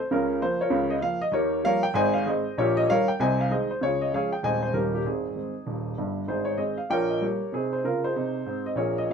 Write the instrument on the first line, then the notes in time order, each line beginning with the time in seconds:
upright piano
0.11 C#2 C#3 C#4 F4 A#4
0.42 F3 A#3 C5
0.61 F4 A#4 C#5
0.70 C#2 C#3
0.90 D#5
1.01 F3 A#3 F5
1.21 D#5
1.32 D#2 D#3 G4 A#4 C#5
1.64 F3 G3 A#3 A#4 C#5 F5
1.83 G5
1.94 G#1 G#2 C5 D#5 G#5
2.13 F5
2.26 D#3 G#3 C4 G#4 C5 D#5
2.58 A#1 A#2 G4 A#4 C#5
2.77 D#5
2.88 D#3 G3 D#4 A#4 C#5 F5
3.08 G5
3.20 C2 C3 C5 D#5 G#5
3.41 F5
3.50 D#3 G#3 D#4 G#4 C5 D#5
3.71 C5
3.81 C#2 C#3 F4 G#4 C#5
4.01 D#5
4.12 F3 G#3 C#4 G#4 C#5 F5
4.33 G5
4.43 D#1 D#2 D#3 G#3 C4 C5 D#5 G#5
4.63 C5
4.73 D#1 D#2 D#3 G3 C#4 D#4 G4 A#4
4.95 G4
5.05 G#1 G#2 C4 D#4 G#4
5.35 D#3 G#3 C4
5.67 D#1 D#2
5.98 G1 G2
6.28 G#1 G#2 D#4 G#4 C5
6.45 C#5
6.57 D#3 G#3 C4 G#4 C5 D#5
6.78 F5
6.90 A#1 A#2 A#4 C#5 G5
7.09 D#5
7.21 G3 A#3 G4 A#4 C#5
7.52 C3 C4 D#4 G#4
7.73 C5
7.84 C#3 F4 A#4
8.04 D#4 G#4 C5
8.16 C3 D#4
8.46 G#2 C4
8.66 D#5
8.75 A#1 A#2 G#4 A#4 C#5
8.98 D#5
9.10 F3 G#3 C#4